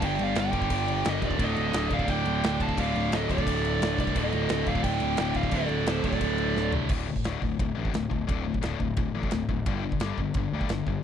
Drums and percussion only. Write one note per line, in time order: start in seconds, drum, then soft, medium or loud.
0.02 kick loud
0.02 crash loud
0.19 crash medium
0.35 snare loud
0.35 crash medium
0.53 kick medium
0.53 crash medium
0.62 kick medium
0.70 kick loud
0.70 crash loud
0.88 crash medium
1.05 snare loud
1.05 crash medium
1.22 kick medium
1.22 crash medium
1.31 kick medium
1.39 kick loud
1.39 crash medium
1.56 crash medium
1.73 snare loud
1.73 crash medium
1.90 kick medium
1.90 crash medium
1.99 kick medium
2.08 kick loud
2.08 crash medium
2.25 crash medium
2.44 snare loud
2.44 crash medium
2.60 kick medium
2.60 crash medium
2.69 kick medium
2.77 kick loud
2.77 crash medium
2.96 crash medium
3.12 snare loud
3.12 crash medium
3.29 kick medium
3.29 crash medium
3.38 kick medium
3.47 kick loud
3.47 crash loud
3.65 crash medium
3.82 snare loud
3.82 crash loud
3.98 kick medium
3.98 crash medium
4.07 kick medium
4.16 kick loud
4.16 crash loud
4.32 crash medium
4.49 snare loud
4.49 crash medium
4.66 kick medium
4.66 crash medium
4.75 kick medium
4.84 kick loud
4.84 crash medium
5.00 crash medium
5.17 snare loud
5.17 crash medium
5.34 kick medium
5.34 crash medium
5.43 kick medium
5.51 kick loud
5.51 crash medium
5.69 crash medium
5.86 snare loud
5.86 crash medium
6.04 kick medium
6.04 crash medium
6.13 kick medium
6.21 kick loud
6.21 crash loud
6.38 crash medium
6.56 snare medium
6.72 floor tom medium
6.89 kick loud
6.89 crash loud
7.16 kick medium
7.24 snare loud
7.24 ride bell medium
7.42 kick medium
7.59 kick loud
7.59 ride bell medium
7.85 kick medium
7.94 snare loud
7.94 ride bell medium
8.11 kick medium
8.29 kick loud
8.29 ride bell medium
8.54 kick medium
8.63 snare loud
8.63 ride bell medium
8.80 kick medium
8.97 kick loud
8.97 ride bell medium
9.23 kick medium
9.31 snare loud
9.31 ride bell medium
9.49 kick medium
9.66 kick loud
9.66 ride bell medium
9.92 kick medium
10.00 snare loud
10.00 ride bell medium
10.18 kick medium
10.34 kick loud
10.34 ride bell medium
10.61 kick medium
10.69 snare loud
10.69 ride bell medium
10.87 kick medium